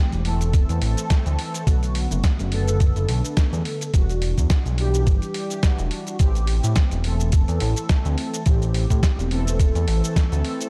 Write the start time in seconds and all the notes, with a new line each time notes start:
Already playing: E3 A3 C4 G4
0.12 E1, closed hi-hat, cabasa
0.24 E3 A3 C4 A4, open hi-hat
0.41 closed hi-hat, cabasa
0.53 kick, closed hi-hat, cabasa
0.69 E2, closed hi-hat, cabasa
0.82 A1, open hi-hat
0.97 closed hi-hat, cabasa
1.10 kick, snare, closed hi-hat, cabasa
1.26 D2, closed hi-hat, cabasa
1.39 open hi-hat
1.54 closed hi-hat, cabasa
1.66 B1 D3 A3 B3 F#4, kick, closed hi-hat, cabasa
1.83 closed hi-hat, cabasa
1.95 open hi-hat
2.11 F#1, closed hi-hat, cabasa
2.24 kick, snare, closed hi-hat, cabasa
2.39 F#1, closed hi-hat, cabasa
2.51 D3 A3 B3 A4, open hi-hat
2.68 closed hi-hat, cabasa
2.80 kick, closed hi-hat, cabasa
2.96 F#1, closed hi-hat, cabasa
3.09 B1, open hi-hat
3.24 closed hi-hat, cabasa
3.37 kick, snare, closed hi-hat, cabasa
3.53 E2, closed hi-hat, cabasa
3.65 open hi-hat
3.81 closed hi-hat, cabasa
3.93 E1 E3 G3 D4 F#4, kick, closed hi-hat, cabasa
4.09 closed hi-hat, cabasa
4.22 open hi-hat
4.38 E2, kick, closed hi-hat, cabasa
4.50 kick, snare, closed hi-hat, cabasa
4.66 B1, closed hi-hat, cabasa
4.78 E3 G3 D4 G4, open hi-hat
4.94 closed hi-hat, cabasa
5.07 G1, kick, closed hi-hat, cabasa
5.22 closed hi-hat, cabasa
5.34 open hi-hat
5.50 closed hi-hat, cabasa
5.63 E3 G3 D4 F#4, kick, snare, closed hi-hat, cabasa
5.79 E1, closed hi-hat, cabasa
5.91 open hi-hat
6.07 closed hi-hat, cabasa
6.19 A1 E3 A3 C4 G4, kick, closed hi-hat, cabasa
6.35 closed hi-hat, cabasa
6.47 open hi-hat
6.63 A2, closed hi-hat, cabasa
6.76 kick, snare, closed hi-hat, cabasa
6.91 E1, closed hi-hat, cabasa
7.04 E3 A3 C4 A4, open hi-hat
7.20 closed hi-hat, cabasa
7.32 kick, closed hi-hat, cabasa
7.48 E2, closed hi-hat, cabasa
7.60 A1, open hi-hat
7.76 closed hi-hat, cabasa
7.89 kick, snare, closed hi-hat, cabasa
8.05 D2, closed hi-hat, cabasa
8.18 open hi-hat
8.34 closed hi-hat, cabasa
8.45 A1 E3 A3 C4 G4, kick, closed hi-hat, cabasa
8.62 closed hi-hat, cabasa
8.74 open hi-hat
8.90 A2, kick, closed hi-hat, cabasa
9.03 kick, snare, closed hi-hat, cabasa
9.19 E1, closed hi-hat, cabasa
9.30 E3 A3 C4 A4, open hi-hat
9.47 closed hi-hat, cabasa
9.60 kick, closed hi-hat, cabasa
9.75 E2, closed hi-hat, cabasa
9.88 A1, open hi-hat
10.04 closed hi-hat, cabasa
10.16 kick, snare, closed hi-hat, cabasa
10.32 D2, closed hi-hat, cabasa
10.45 open hi-hat
10.61 closed hi-hat, cabasa